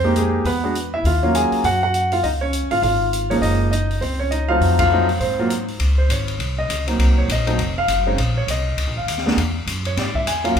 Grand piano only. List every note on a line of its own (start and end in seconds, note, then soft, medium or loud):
0.00 0.14 C4 medium
0.00 0.14 C5 medium
0.04 0.16 G#3 medium
0.04 0.43 A#3 medium
0.04 0.43 D#4 medium
0.04 0.43 G4 medium
0.17 0.44 G#3 medium
0.17 0.44 G#4 medium
0.46 0.62 B3 medium
0.46 0.95 B4 medium
0.63 0.74 G#3 medium
0.63 0.74 B3 medium
0.63 0.74 D4 medium
0.63 0.74 F#4 medium
0.94 1.05 E4 medium
0.94 1.05 E5 medium
1.06 1.22 F4 medium
1.06 1.36 F5 medium
1.23 1.62 F#3 medium
1.23 1.62 A#3 medium
1.23 1.62 C#4 medium
1.23 1.62 F4 medium
1.35 1.63 G#4 medium
1.35 1.65 G#5 medium
1.65 1.81 F#4 medium
1.65 1.82 F#5 medium
1.83 2.11 F#4 medium
1.83 2.13 F#5 loud
2.12 2.23 F4 medium
2.12 2.24 F5 medium
2.23 2.29 D#4 medium
2.23 2.28 D#5 medium
2.41 2.69 C#4 medium
2.41 2.72 C#5 medium
2.71 2.82 F4 medium
2.71 2.81 F5 loud
2.83 3.28 F4 medium
2.83 3.32 F5 medium
3.30 3.69 F3 medium
3.30 3.70 G#3 medium
3.30 3.70 A#3 medium
3.30 3.36 C#4 medium
3.30 3.42 D#4 medium
3.30 3.35 C#5 medium
3.42 3.70 D#4 medium
3.42 3.69 D#5 medium
3.71 4.00 D#4 medium
3.71 4.02 D#5 medium
4.01 4.19 C4 medium
4.01 4.18 C5 medium
4.19 4.31 C#4 medium
4.19 4.31 C#5 medium
4.31 4.48 D#4 medium
4.31 4.49 D#5 medium
4.48 4.89 F#3 medium
4.48 4.88 A3 medium
4.48 4.89 C4 medium
4.48 4.89 D#4 medium
4.48 4.77 F4 medium
4.48 4.76 F5 loud
4.79 5.07 F4 medium
4.79 5.06 F5 loud
4.91 5.07 F#3 medium
4.91 5.07 A3 medium
4.91 5.07 C4 medium
4.91 5.07 D#4 medium
5.20 5.38 C4 medium
5.20 5.64 C5 medium
5.39 5.49 F#3 medium
5.39 5.49 A#3 medium
5.39 5.49 C4 medium
5.39 5.49 F4 medium
5.98 6.09 C5 medium
6.11 6.55 C#5 medium
6.59 6.86 D#5 medium
6.87 7.26 F#3 soft
6.87 7.26 A#3 soft
6.87 7.26 C4 soft
6.87 7.27 D#4 medium
7.18 7.29 C#5 medium
7.32 7.75 D#5 medium
7.47 7.57 F#3 medium
7.47 7.57 A3 medium
7.47 7.57 C4 medium
7.47 7.57 D#4 medium
7.78 8.05 F5 loud
8.07 8.17 G#3 medium
8.07 8.17 C4 medium
8.07 8.17 C#4 medium
8.07 8.17 D#4 medium
8.37 8.48 C#5 medium
8.50 8.93 D#5 medium
8.97 9.24 F5 medium
9.26 9.36 G#3 medium
9.26 9.36 A#3 medium
9.26 9.36 B3 medium
9.26 9.37 D4 medium
9.86 9.97 C#5 medium
10.00 10.15 D5 medium
10.15 10.26 E5 medium
10.27 10.44 G#5 medium
10.44 10.55 F#3 medium
10.44 10.55 A#3 medium
10.44 10.55 C#4 medium
10.44 10.55 F4 medium
10.44 10.56 F5 medium